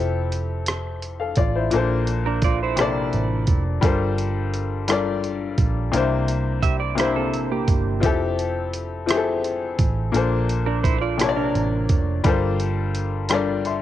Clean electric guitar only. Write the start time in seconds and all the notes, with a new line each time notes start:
2.26 D4 A#4
2.44 F4 D5
2.63 E4 C5
6.63 G4 E5
6.80 D5
6.98 E4 C5
7.16 C4 A4
7.51 A#3 G4
10.66 D4 A#4
10.84 E4 C5
11.01 F4 D5
11.36 D4 A#4